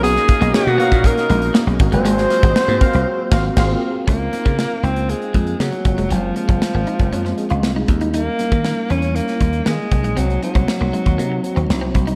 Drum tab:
CC |----------------|----------x-x---|----------------|----------------|
HH |xxxx-xxxxxxx-xxx|xxxx-xxx--------|x-xx--xxxxxx-xxx|x-xx--xxx-xx--xx|
SD |-oo-o----o--o---|-oo-o-----o-o---|--o-o-------o---|----o----o--o---|
BD |--o----oo-----o-|---o--o---o-o---|o--o------o---o-|---o---o------o-|

CC |----------------|----------------|
HH |x-xx--xxxxxx--xx|xxxx--xxx-xx--xx|
SD |--o-o----o--o---|----o-------o---|
BD |---o------o---o-|---o---o------o-|